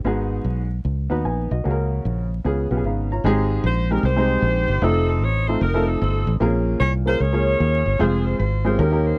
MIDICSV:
0, 0, Header, 1, 4, 480
1, 0, Start_track
1, 0, Tempo, 397351
1, 57, Time_signature, 4, 2, 24, 8
1, 11095, End_track
2, 0, Start_track
2, 0, Title_t, "Saxophone section"
2, 0, Program_c, 0, 65
2, 4424, Note_on_c, 0, 72, 89
2, 4705, Note_off_c, 0, 72, 0
2, 4729, Note_on_c, 0, 70, 81
2, 4884, Note_on_c, 0, 67, 82
2, 4887, Note_off_c, 0, 70, 0
2, 4888, Note_on_c, 0, 63, 71
2, 4892, Note_on_c, 0, 72, 106
2, 5792, Note_off_c, 0, 67, 0
2, 5794, Note_off_c, 0, 63, 0
2, 5796, Note_off_c, 0, 72, 0
2, 5838, Note_on_c, 0, 69, 105
2, 5840, Note_on_c, 0, 60, 74
2, 5842, Note_on_c, 0, 63, 80
2, 6132, Note_off_c, 0, 69, 0
2, 6147, Note_on_c, 0, 69, 97
2, 6303, Note_off_c, 0, 69, 0
2, 6322, Note_on_c, 0, 73, 111
2, 6618, Note_on_c, 0, 72, 99
2, 6633, Note_off_c, 0, 73, 0
2, 6748, Note_off_c, 0, 60, 0
2, 6749, Note_off_c, 0, 63, 0
2, 6787, Note_on_c, 0, 70, 101
2, 6789, Note_off_c, 0, 72, 0
2, 6795, Note_on_c, 0, 63, 75
2, 7096, Note_on_c, 0, 69, 91
2, 7105, Note_off_c, 0, 70, 0
2, 7259, Note_off_c, 0, 69, 0
2, 7265, Note_off_c, 0, 63, 0
2, 7274, Note_on_c, 0, 60, 64
2, 7274, Note_on_c, 0, 69, 81
2, 7279, Note_on_c, 0, 63, 58
2, 7642, Note_off_c, 0, 69, 0
2, 7719, Note_off_c, 0, 60, 0
2, 7722, Note_off_c, 0, 63, 0
2, 8219, Note_on_c, 0, 73, 104
2, 8363, Note_off_c, 0, 73, 0
2, 8550, Note_on_c, 0, 72, 115
2, 8700, Note_off_c, 0, 72, 0
2, 8714, Note_on_c, 0, 73, 108
2, 8717, Note_on_c, 0, 68, 80
2, 8719, Note_on_c, 0, 65, 86
2, 9621, Note_off_c, 0, 68, 0
2, 9622, Note_off_c, 0, 65, 0
2, 9667, Note_off_c, 0, 73, 0
2, 9677, Note_on_c, 0, 60, 71
2, 9677, Note_on_c, 0, 68, 95
2, 9682, Note_on_c, 0, 65, 74
2, 9970, Note_on_c, 0, 72, 102
2, 9984, Note_off_c, 0, 68, 0
2, 10117, Note_off_c, 0, 72, 0
2, 10132, Note_on_c, 0, 72, 97
2, 10428, Note_off_c, 0, 72, 0
2, 10448, Note_on_c, 0, 70, 98
2, 10453, Note_on_c, 0, 61, 72
2, 10456, Note_on_c, 0, 67, 70
2, 10578, Note_off_c, 0, 60, 0
2, 10581, Note_off_c, 0, 65, 0
2, 10930, Note_off_c, 0, 70, 0
2, 10942, Note_on_c, 0, 72, 89
2, 11080, Note_off_c, 0, 67, 0
2, 11095, Note_off_c, 0, 61, 0
2, 11095, Note_off_c, 0, 72, 0
2, 11095, End_track
3, 0, Start_track
3, 0, Title_t, "Upright piano"
3, 0, Program_c, 1, 0
3, 59, Note_on_c, 1, 59, 83
3, 65, Note_on_c, 1, 44, 74
3, 67, Note_on_c, 1, 63, 71
3, 72, Note_on_c, 1, 66, 78
3, 78, Note_on_c, 1, 68, 88
3, 728, Note_off_c, 1, 59, 0
3, 732, Note_off_c, 1, 63, 0
3, 734, Note_off_c, 1, 66, 0
3, 737, Note_off_c, 1, 68, 0
3, 813, Note_off_c, 1, 44, 0
3, 1325, Note_on_c, 1, 59, 81
3, 1334, Note_on_c, 1, 63, 77
3, 1340, Note_on_c, 1, 66, 74
3, 1348, Note_on_c, 1, 71, 82
3, 1498, Note_off_c, 1, 71, 0
3, 1507, Note_off_c, 1, 66, 0
3, 1511, Note_on_c, 1, 80, 62
3, 1516, Note_on_c, 1, 71, 55
3, 1797, Note_off_c, 1, 59, 0
3, 1802, Note_off_c, 1, 63, 0
3, 1810, Note_off_c, 1, 80, 0
3, 1813, Note_off_c, 1, 71, 0
3, 1831, Note_on_c, 1, 75, 63
3, 1841, Note_on_c, 1, 66, 50
3, 1978, Note_off_c, 1, 66, 0
3, 1980, Note_on_c, 1, 58, 77
3, 1990, Note_on_c, 1, 61, 73
3, 1994, Note_on_c, 1, 49, 78
3, 1996, Note_on_c, 1, 66, 75
3, 2004, Note_on_c, 1, 68, 69
3, 2061, Note_on_c, 1, 70, 88
3, 2073, Note_off_c, 1, 68, 0
3, 2287, Note_off_c, 1, 75, 0
3, 2654, Note_off_c, 1, 58, 0
3, 2659, Note_off_c, 1, 61, 0
3, 2662, Note_off_c, 1, 66, 0
3, 2694, Note_off_c, 1, 70, 0
3, 2743, Note_off_c, 1, 49, 0
3, 2953, Note_on_c, 1, 59, 71
3, 2955, Note_on_c, 1, 61, 67
3, 2962, Note_on_c, 1, 49, 65
3, 2962, Note_on_c, 1, 65, 68
3, 2971, Note_on_c, 1, 68, 90
3, 3207, Note_off_c, 1, 59, 0
3, 3208, Note_off_c, 1, 61, 0
3, 3211, Note_off_c, 1, 65, 0
3, 3216, Note_off_c, 1, 68, 0
3, 3275, Note_on_c, 1, 59, 76
3, 3278, Note_on_c, 1, 61, 74
3, 3281, Note_on_c, 1, 65, 72
3, 3289, Note_on_c, 1, 67, 72
3, 3320, Note_off_c, 1, 67, 0
3, 3350, Note_on_c, 1, 68, 79
3, 3442, Note_off_c, 1, 65, 0
3, 3450, Note_on_c, 1, 77, 64
3, 3453, Note_on_c, 1, 71, 59
3, 3457, Note_on_c, 1, 63, 51
3, 3477, Note_off_c, 1, 68, 0
3, 3708, Note_off_c, 1, 49, 0
3, 3736, Note_off_c, 1, 59, 0
3, 3737, Note_off_c, 1, 61, 0
3, 3738, Note_off_c, 1, 77, 0
3, 3745, Note_off_c, 1, 71, 0
3, 3747, Note_off_c, 1, 63, 0
3, 3764, Note_on_c, 1, 73, 57
3, 3768, Note_on_c, 1, 82, 67
3, 3772, Note_on_c, 1, 65, 51
3, 3915, Note_off_c, 1, 82, 0
3, 3921, Note_on_c, 1, 56, 100
3, 3928, Note_on_c, 1, 60, 83
3, 3931, Note_on_c, 1, 44, 87
3, 3935, Note_on_c, 1, 63, 81
3, 3936, Note_on_c, 1, 67, 82
3, 3942, Note_on_c, 1, 68, 111
3, 4216, Note_off_c, 1, 73, 0
3, 4220, Note_off_c, 1, 65, 0
3, 4390, Note_off_c, 1, 56, 0
3, 4394, Note_off_c, 1, 60, 0
3, 4398, Note_off_c, 1, 63, 0
3, 4398, Note_off_c, 1, 67, 0
3, 4401, Note_off_c, 1, 68, 0
3, 4672, Note_off_c, 1, 44, 0
3, 4718, Note_on_c, 1, 56, 69
3, 4721, Note_on_c, 1, 60, 60
3, 4726, Note_on_c, 1, 63, 62
3, 4728, Note_on_c, 1, 67, 66
3, 4733, Note_on_c, 1, 70, 72
3, 4876, Note_off_c, 1, 56, 0
3, 4878, Note_off_c, 1, 60, 0
3, 4881, Note_off_c, 1, 63, 0
3, 4882, Note_off_c, 1, 67, 0
3, 4884, Note_off_c, 1, 70, 0
3, 5027, Note_on_c, 1, 56, 72
3, 5030, Note_on_c, 1, 60, 77
3, 5035, Note_on_c, 1, 63, 74
3, 5042, Note_on_c, 1, 67, 63
3, 5045, Note_on_c, 1, 72, 88
3, 5594, Note_off_c, 1, 56, 0
3, 5596, Note_off_c, 1, 60, 0
3, 5598, Note_off_c, 1, 63, 0
3, 5601, Note_off_c, 1, 67, 0
3, 5603, Note_off_c, 1, 72, 0
3, 5831, Note_on_c, 1, 57, 84
3, 5831, Note_on_c, 1, 60, 72
3, 5836, Note_on_c, 1, 63, 77
3, 5844, Note_on_c, 1, 69, 97
3, 5845, Note_on_c, 1, 65, 76
3, 6303, Note_off_c, 1, 57, 0
3, 6303, Note_off_c, 1, 60, 0
3, 6306, Note_off_c, 1, 63, 0
3, 6310, Note_off_c, 1, 65, 0
3, 6310, Note_off_c, 1, 69, 0
3, 6619, Note_on_c, 1, 57, 66
3, 6626, Note_on_c, 1, 60, 70
3, 6628, Note_on_c, 1, 63, 63
3, 6630, Note_on_c, 1, 65, 68
3, 6641, Note_on_c, 1, 69, 72
3, 6785, Note_off_c, 1, 57, 0
3, 6788, Note_off_c, 1, 60, 0
3, 6789, Note_off_c, 1, 63, 0
3, 6790, Note_off_c, 1, 65, 0
3, 6796, Note_off_c, 1, 69, 0
3, 6933, Note_on_c, 1, 60, 67
3, 6934, Note_on_c, 1, 57, 76
3, 6941, Note_on_c, 1, 63, 65
3, 6947, Note_on_c, 1, 65, 72
3, 6951, Note_on_c, 1, 69, 87
3, 7504, Note_off_c, 1, 57, 0
3, 7504, Note_off_c, 1, 60, 0
3, 7508, Note_off_c, 1, 63, 0
3, 7511, Note_off_c, 1, 65, 0
3, 7513, Note_off_c, 1, 69, 0
3, 7732, Note_on_c, 1, 60, 68
3, 7733, Note_on_c, 1, 58, 82
3, 7740, Note_on_c, 1, 46, 76
3, 7742, Note_on_c, 1, 65, 82
3, 7747, Note_on_c, 1, 68, 78
3, 7753, Note_on_c, 1, 70, 103
3, 7795, Note_on_c, 1, 61, 83
3, 7817, Note_off_c, 1, 60, 0
3, 8211, Note_off_c, 1, 58, 0
3, 8215, Note_off_c, 1, 65, 0
3, 8218, Note_off_c, 1, 68, 0
3, 8221, Note_off_c, 1, 70, 0
3, 8242, Note_off_c, 1, 61, 0
3, 8490, Note_off_c, 1, 46, 0
3, 8524, Note_on_c, 1, 58, 69
3, 8526, Note_on_c, 1, 61, 61
3, 8531, Note_on_c, 1, 65, 66
3, 8541, Note_on_c, 1, 68, 60
3, 8541, Note_on_c, 1, 70, 82
3, 8694, Note_off_c, 1, 58, 0
3, 8695, Note_off_c, 1, 61, 0
3, 8697, Note_off_c, 1, 65, 0
3, 8702, Note_off_c, 1, 68, 0
3, 8702, Note_off_c, 1, 70, 0
3, 8850, Note_on_c, 1, 61, 70
3, 8851, Note_on_c, 1, 58, 81
3, 8854, Note_on_c, 1, 65, 71
3, 8863, Note_on_c, 1, 68, 75
3, 8866, Note_on_c, 1, 73, 84
3, 9419, Note_off_c, 1, 58, 0
3, 9419, Note_off_c, 1, 61, 0
3, 9421, Note_off_c, 1, 65, 0
3, 9425, Note_off_c, 1, 68, 0
3, 9427, Note_off_c, 1, 73, 0
3, 9654, Note_on_c, 1, 56, 83
3, 9660, Note_on_c, 1, 60, 79
3, 9662, Note_on_c, 1, 65, 84
3, 9670, Note_on_c, 1, 68, 80
3, 9677, Note_on_c, 1, 72, 97
3, 10128, Note_off_c, 1, 56, 0
3, 10131, Note_off_c, 1, 60, 0
3, 10132, Note_off_c, 1, 65, 0
3, 10136, Note_off_c, 1, 68, 0
3, 10139, Note_off_c, 1, 72, 0
3, 10443, Note_on_c, 1, 56, 75
3, 10445, Note_on_c, 1, 60, 65
3, 10450, Note_on_c, 1, 65, 72
3, 10455, Note_on_c, 1, 68, 68
3, 10463, Note_on_c, 1, 72, 80
3, 10609, Note_off_c, 1, 56, 0
3, 10610, Note_off_c, 1, 60, 0
3, 10612, Note_on_c, 1, 58, 78
3, 10613, Note_off_c, 1, 65, 0
3, 10614, Note_on_c, 1, 61, 78
3, 10615, Note_off_c, 1, 68, 0
3, 10617, Note_on_c, 1, 63, 72
3, 10619, Note_off_c, 1, 72, 0
3, 10619, Note_on_c, 1, 51, 65
3, 10626, Note_on_c, 1, 70, 96
3, 10627, Note_on_c, 1, 67, 73
3, 10741, Note_off_c, 1, 58, 0
3, 10743, Note_off_c, 1, 61, 0
3, 10744, Note_off_c, 1, 63, 0
3, 10749, Note_off_c, 1, 67, 0
3, 10749, Note_off_c, 1, 70, 0
3, 10769, Note_on_c, 1, 58, 80
3, 10770, Note_on_c, 1, 61, 72
3, 10775, Note_on_c, 1, 63, 73
3, 10779, Note_on_c, 1, 67, 72
3, 10788, Note_on_c, 1, 70, 88
3, 11095, Note_off_c, 1, 51, 0
3, 11095, Note_off_c, 1, 58, 0
3, 11095, Note_off_c, 1, 61, 0
3, 11095, Note_off_c, 1, 63, 0
3, 11095, Note_off_c, 1, 67, 0
3, 11095, Note_off_c, 1, 70, 0
3, 11095, End_track
4, 0, Start_track
4, 0, Title_t, "Fingered electric bass"
4, 0, Program_c, 2, 33
4, 51, Note_on_c, 2, 32, 86
4, 465, Note_off_c, 2, 32, 0
4, 537, Note_on_c, 2, 35, 91
4, 949, Note_off_c, 2, 35, 0
4, 1024, Note_on_c, 2, 37, 91
4, 1293, Note_off_c, 2, 37, 0
4, 1341, Note_on_c, 2, 39, 77
4, 1483, Note_off_c, 2, 39, 0
4, 1506, Note_on_c, 2, 34, 76
4, 1776, Note_off_c, 2, 34, 0
4, 1825, Note_on_c, 2, 35, 85
4, 1966, Note_off_c, 2, 35, 0
4, 1996, Note_on_c, 2, 37, 87
4, 2404, Note_off_c, 2, 37, 0
4, 2477, Note_on_c, 2, 34, 88
4, 2886, Note_off_c, 2, 34, 0
4, 2959, Note_on_c, 2, 37, 83
4, 3226, Note_off_c, 2, 37, 0
4, 3271, Note_on_c, 2, 35, 82
4, 3412, Note_off_c, 2, 35, 0
4, 3431, Note_on_c, 2, 32, 84
4, 3843, Note_off_c, 2, 32, 0
4, 3912, Note_on_c, 2, 32, 86
4, 4323, Note_off_c, 2, 32, 0
4, 4393, Note_on_c, 2, 34, 106
4, 4804, Note_off_c, 2, 34, 0
4, 4869, Note_on_c, 2, 36, 90
4, 5281, Note_off_c, 2, 36, 0
4, 5344, Note_on_c, 2, 34, 100
4, 5617, Note_off_c, 2, 34, 0
4, 5654, Note_on_c, 2, 31, 92
4, 5802, Note_off_c, 2, 31, 0
4, 5818, Note_on_c, 2, 29, 116
4, 6303, Note_off_c, 2, 29, 0
4, 6303, Note_on_c, 2, 33, 99
4, 6716, Note_off_c, 2, 33, 0
4, 6778, Note_on_c, 2, 29, 96
4, 7192, Note_off_c, 2, 29, 0
4, 7266, Note_on_c, 2, 31, 104
4, 7536, Note_off_c, 2, 31, 0
4, 7574, Note_on_c, 2, 33, 100
4, 7720, Note_off_c, 2, 33, 0
4, 7737, Note_on_c, 2, 34, 92
4, 8150, Note_off_c, 2, 34, 0
4, 8218, Note_on_c, 2, 36, 99
4, 8629, Note_off_c, 2, 36, 0
4, 8699, Note_on_c, 2, 37, 91
4, 9110, Note_off_c, 2, 37, 0
4, 9182, Note_on_c, 2, 39, 105
4, 9451, Note_off_c, 2, 39, 0
4, 9491, Note_on_c, 2, 31, 92
4, 9635, Note_off_c, 2, 31, 0
4, 9660, Note_on_c, 2, 29, 110
4, 10068, Note_off_c, 2, 29, 0
4, 10141, Note_on_c, 2, 32, 91
4, 10616, Note_on_c, 2, 39, 111
4, 10634, Note_off_c, 2, 32, 0
4, 11024, Note_off_c, 2, 39, 0
4, 11095, End_track
0, 0, End_of_file